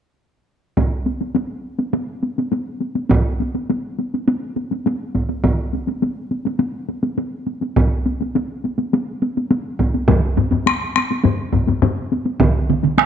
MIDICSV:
0, 0, Header, 1, 2, 480
1, 0, Start_track
1, 0, Tempo, 580833
1, 642, Time_signature, 4, 2, 24, 8
1, 10792, End_track
2, 0, Start_track
2, 0, Title_t, "Taiko and cinematic ensemble drums"
2, 637, Note_on_c, 9, 41, 66
2, 639, Note_on_c, 9, 48, 51
2, 719, Note_off_c, 9, 41, 0
2, 721, Note_off_c, 9, 48, 0
2, 879, Note_on_c, 9, 48, 40
2, 962, Note_off_c, 9, 48, 0
2, 998, Note_on_c, 9, 48, 40
2, 1080, Note_off_c, 9, 48, 0
2, 1113, Note_on_c, 9, 48, 52
2, 1196, Note_off_c, 9, 48, 0
2, 1475, Note_on_c, 9, 48, 40
2, 1558, Note_off_c, 9, 48, 0
2, 1598, Note_on_c, 9, 48, 53
2, 1680, Note_off_c, 9, 48, 0
2, 1843, Note_on_c, 9, 48, 40
2, 1926, Note_off_c, 9, 48, 0
2, 1968, Note_on_c, 9, 48, 44
2, 2051, Note_off_c, 9, 48, 0
2, 2080, Note_on_c, 9, 48, 50
2, 2163, Note_off_c, 9, 48, 0
2, 2318, Note_on_c, 9, 48, 35
2, 2401, Note_off_c, 9, 48, 0
2, 2440, Note_on_c, 9, 48, 42
2, 2523, Note_off_c, 9, 48, 0
2, 2560, Note_on_c, 9, 48, 51
2, 2569, Note_on_c, 9, 41, 81
2, 2643, Note_off_c, 9, 48, 0
2, 2652, Note_off_c, 9, 41, 0
2, 2810, Note_on_c, 9, 48, 42
2, 2892, Note_off_c, 9, 48, 0
2, 2931, Note_on_c, 9, 48, 41
2, 3013, Note_off_c, 9, 48, 0
2, 3054, Note_on_c, 9, 48, 49
2, 3137, Note_off_c, 9, 48, 0
2, 3294, Note_on_c, 9, 48, 40
2, 3377, Note_off_c, 9, 48, 0
2, 3421, Note_on_c, 9, 48, 39
2, 3503, Note_off_c, 9, 48, 0
2, 3537, Note_on_c, 9, 48, 55
2, 3619, Note_off_c, 9, 48, 0
2, 3772, Note_on_c, 9, 48, 40
2, 3855, Note_off_c, 9, 48, 0
2, 3894, Note_on_c, 9, 48, 42
2, 3977, Note_off_c, 9, 48, 0
2, 4016, Note_on_c, 9, 48, 53
2, 4099, Note_off_c, 9, 48, 0
2, 4252, Note_on_c, 9, 48, 37
2, 4255, Note_on_c, 9, 41, 49
2, 4335, Note_off_c, 9, 48, 0
2, 4338, Note_off_c, 9, 41, 0
2, 4373, Note_on_c, 9, 48, 39
2, 4455, Note_off_c, 9, 48, 0
2, 4493, Note_on_c, 9, 41, 69
2, 4495, Note_on_c, 9, 48, 48
2, 4575, Note_off_c, 9, 41, 0
2, 4577, Note_off_c, 9, 48, 0
2, 4737, Note_on_c, 9, 48, 40
2, 4819, Note_off_c, 9, 48, 0
2, 4853, Note_on_c, 9, 48, 41
2, 4936, Note_off_c, 9, 48, 0
2, 4977, Note_on_c, 9, 48, 46
2, 5060, Note_off_c, 9, 48, 0
2, 5214, Note_on_c, 9, 48, 33
2, 5297, Note_off_c, 9, 48, 0
2, 5332, Note_on_c, 9, 48, 43
2, 5415, Note_off_c, 9, 48, 0
2, 5446, Note_on_c, 9, 48, 58
2, 5529, Note_off_c, 9, 48, 0
2, 5690, Note_on_c, 9, 48, 41
2, 5773, Note_off_c, 9, 48, 0
2, 5808, Note_on_c, 9, 48, 42
2, 5891, Note_off_c, 9, 48, 0
2, 5930, Note_on_c, 9, 48, 48
2, 6013, Note_off_c, 9, 48, 0
2, 6171, Note_on_c, 9, 48, 36
2, 6253, Note_off_c, 9, 48, 0
2, 6291, Note_on_c, 9, 48, 35
2, 6374, Note_off_c, 9, 48, 0
2, 6416, Note_on_c, 9, 41, 80
2, 6419, Note_on_c, 9, 48, 52
2, 6498, Note_off_c, 9, 41, 0
2, 6502, Note_off_c, 9, 48, 0
2, 6662, Note_on_c, 9, 48, 42
2, 6744, Note_off_c, 9, 48, 0
2, 6782, Note_on_c, 9, 48, 42
2, 6864, Note_off_c, 9, 48, 0
2, 6902, Note_on_c, 9, 48, 50
2, 6985, Note_off_c, 9, 48, 0
2, 7141, Note_on_c, 9, 48, 38
2, 7223, Note_off_c, 9, 48, 0
2, 7262, Note_on_c, 9, 48, 41
2, 7345, Note_off_c, 9, 48, 0
2, 7382, Note_on_c, 9, 48, 59
2, 7465, Note_off_c, 9, 48, 0
2, 7623, Note_on_c, 9, 48, 46
2, 7706, Note_off_c, 9, 48, 0
2, 7747, Note_on_c, 9, 48, 43
2, 7830, Note_off_c, 9, 48, 0
2, 7856, Note_on_c, 9, 48, 55
2, 7938, Note_off_c, 9, 48, 0
2, 8092, Note_on_c, 9, 41, 69
2, 8099, Note_on_c, 9, 48, 42
2, 8175, Note_off_c, 9, 41, 0
2, 8181, Note_off_c, 9, 48, 0
2, 8219, Note_on_c, 9, 48, 42
2, 8301, Note_off_c, 9, 48, 0
2, 8328, Note_on_c, 9, 41, 90
2, 8333, Note_on_c, 9, 45, 88
2, 8336, Note_on_c, 9, 48, 59
2, 8411, Note_off_c, 9, 41, 0
2, 8416, Note_off_c, 9, 45, 0
2, 8419, Note_off_c, 9, 48, 0
2, 8573, Note_on_c, 9, 48, 52
2, 8577, Note_on_c, 9, 45, 62
2, 8655, Note_off_c, 9, 48, 0
2, 8659, Note_off_c, 9, 45, 0
2, 8691, Note_on_c, 9, 48, 47
2, 8696, Note_on_c, 9, 45, 66
2, 8774, Note_off_c, 9, 48, 0
2, 8779, Note_off_c, 9, 45, 0
2, 8811, Note_on_c, 9, 48, 58
2, 8819, Note_on_c, 9, 37, 64
2, 8894, Note_off_c, 9, 48, 0
2, 8901, Note_off_c, 9, 37, 0
2, 9056, Note_on_c, 9, 37, 69
2, 9056, Note_on_c, 9, 48, 46
2, 9138, Note_off_c, 9, 37, 0
2, 9138, Note_off_c, 9, 48, 0
2, 9178, Note_on_c, 9, 48, 45
2, 9261, Note_off_c, 9, 48, 0
2, 9289, Note_on_c, 9, 48, 65
2, 9296, Note_on_c, 9, 45, 86
2, 9372, Note_off_c, 9, 48, 0
2, 9378, Note_off_c, 9, 45, 0
2, 9524, Note_on_c, 9, 41, 64
2, 9525, Note_on_c, 9, 48, 47
2, 9535, Note_on_c, 9, 45, 63
2, 9607, Note_off_c, 9, 41, 0
2, 9607, Note_off_c, 9, 48, 0
2, 9617, Note_off_c, 9, 45, 0
2, 9647, Note_on_c, 9, 48, 51
2, 9656, Note_on_c, 9, 45, 61
2, 9730, Note_off_c, 9, 48, 0
2, 9739, Note_off_c, 9, 45, 0
2, 9769, Note_on_c, 9, 45, 96
2, 9774, Note_on_c, 9, 48, 58
2, 9852, Note_off_c, 9, 45, 0
2, 9857, Note_off_c, 9, 48, 0
2, 10015, Note_on_c, 9, 48, 51
2, 10097, Note_off_c, 9, 48, 0
2, 10130, Note_on_c, 9, 48, 47
2, 10213, Note_off_c, 9, 48, 0
2, 10245, Note_on_c, 9, 41, 91
2, 10251, Note_on_c, 9, 47, 91
2, 10253, Note_on_c, 9, 48, 65
2, 10328, Note_off_c, 9, 41, 0
2, 10334, Note_off_c, 9, 47, 0
2, 10336, Note_off_c, 9, 48, 0
2, 10491, Note_on_c, 9, 48, 48
2, 10495, Note_on_c, 9, 47, 65
2, 10573, Note_off_c, 9, 48, 0
2, 10578, Note_off_c, 9, 47, 0
2, 10603, Note_on_c, 9, 48, 47
2, 10611, Note_on_c, 9, 47, 58
2, 10686, Note_off_c, 9, 48, 0
2, 10694, Note_off_c, 9, 47, 0
2, 10725, Note_on_c, 9, 48, 59
2, 10730, Note_on_c, 9, 37, 62
2, 10792, Note_off_c, 9, 37, 0
2, 10792, Note_off_c, 9, 48, 0
2, 10792, End_track
0, 0, End_of_file